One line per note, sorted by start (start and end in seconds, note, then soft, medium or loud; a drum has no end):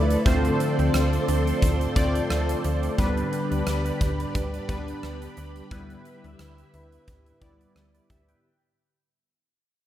0.00 0.17 D2 loud
0.00 0.22 F3 medium
0.00 0.19 A3 medium
0.00 0.20 E4 medium
0.00 0.22 E4 medium
0.00 0.20 F4 medium
0.00 2.94 A4 medium
0.00 0.22 B4 medium
0.00 0.20 D5 medium
0.00 2.95 D5 medium
0.00 0.23 E5 medium
0.00 0.23 D6 medium
0.10 closed hi-hat medium
0.25 0.50 D2 loud
0.25 1.24 D3 medium
0.25 2.95 F3 medium
0.25 1.54 A3 medium
0.25 1.54 C4 medium
0.25 2.95 C4 medium
0.25 1.54 F4 medium
0.25 2.95 A4 medium
0.25 2.96 C5 medium
0.25 1.54 C5 medium
0.25 2.96 C6 medium
0.25 kick loud
0.25 closed hi-hat medium
0.45 closed hi-hat soft
0.60 closed hi-hat medium
0.79 0.90 D2 medium
0.79 closed hi-hat soft
0.94 1.19 D2 loud
0.94 cross-stick loud
0.94 closed hi-hat medium
1.13 closed hi-hat soft
1.28 1.53 D2 loud
1.28 closed hi-hat medium
1.47 closed hi-hat soft
1.62 1.87 D2 loud
1.62 kick medium
1.62 closed hi-hat medium
1.81 closed hi-hat soft
1.96 2.21 D2 medium
1.96 2.92 A3 medium
1.96 2.92 C4 medium
1.96 2.92 F4 medium
1.96 2.93 D5 medium
1.96 kick medium
1.96 closed hi-hat medium
2.15 closed hi-hat soft
2.30 2.55 D2 loud
2.30 cross-stick loud
2.30 closed hi-hat medium
2.49 closed hi-hat medium
2.64 2.89 D2 loud
2.64 closed hi-hat medium
2.83 closed hi-hat soft
2.98 3.23 D2 loud
2.98 3.97 D3 medium
2.98 4.26 G3 medium
2.98 5.67 G3 medium
2.98 4.27 B3 medium
2.98 4.27 D4 medium
2.98 5.67 D4 medium
2.98 8.40 G4 medium
2.98 5.67 B4 medium
2.98 8.40 B4 medium
2.98 4.27 B4 medium
2.98 5.69 D5 medium
2.98 8.40 B5 medium
2.98 kick medium
2.98 closed hi-hat medium
3.17 closed hi-hat soft
3.33 closed hi-hat medium
3.51 3.62 D2 medium
3.51 closed hi-hat soft
3.67 3.91 D2 loud
3.67 cross-stick loud
3.67 closed hi-hat medium
3.86 closed hi-hat soft
4.01 4.25 D2 medium
4.01 kick medium
4.01 closed hi-hat medium
4.20 closed hi-hat soft
4.35 4.59 D2 loud
4.35 kick medium
4.35 closed hi-hat medium
4.54 closed hi-hat soft
4.68 4.94 D2 medium
4.68 5.65 G3 medium
4.68 5.65 B3 medium
4.68 5.65 D4 medium
4.68 5.65 B4 medium
4.68 kick medium
4.68 closed hi-hat medium
4.88 closed hi-hat soft
5.03 5.28 D2 loud
5.03 cross-stick medium
5.03 closed hi-hat medium
5.22 closed hi-hat medium
5.37 5.62 D2 loud
5.37 closed hi-hat medium
5.56 closed hi-hat soft
5.71 5.96 D2 loud
5.71 6.70 D3 medium
5.71 6.99 G3 medium
5.71 8.40 G3 medium
5.71 6.99 B3 medium
5.71 8.40 E4 medium
5.71 7.00 E4 medium
5.71 8.40 B4 medium
5.71 7.00 B4 medium
5.71 8.41 E5 medium
5.71 kick medium
5.71 closed hi-hat medium
5.90 closed hi-hat soft
6.05 closed hi-hat medium
6.24 6.35 D2 loud
6.24 closed hi-hat soft
6.39 6.64 D2 loud
6.39 cross-stick loud
6.39 closed hi-hat medium
6.58 closed hi-hat soft
6.74 6.98 D2 medium
6.74 closed hi-hat medium
6.92 closed hi-hat soft
7.08 7.32 D2 loud
7.08 kick medium
7.08 closed hi-hat medium
7.26 closed hi-hat soft
7.41 7.66 D2 medium
7.41 8.38 G3 medium
7.41 8.38 B3 medium
7.41 8.38 E4 medium
7.41 7.76 D5 medium
7.41 kick medium
7.41 closed hi-hat medium
7.61 closed hi-hat soft
7.76 8.00 D2 medium
7.76 cross-stick medium
7.76 closed hi-hat medium
7.95 8.09 D5 medium
7.95 closed hi-hat soft
8.10 8.34 D2 medium
8.10 8.28 G4 medium
8.10 8.28 E5 medium
8.10 kick medium
8.10 closed hi-hat medium
8.28 8.61 B4 soft
8.28 8.61 G5 medium
8.28 closed hi-hat soft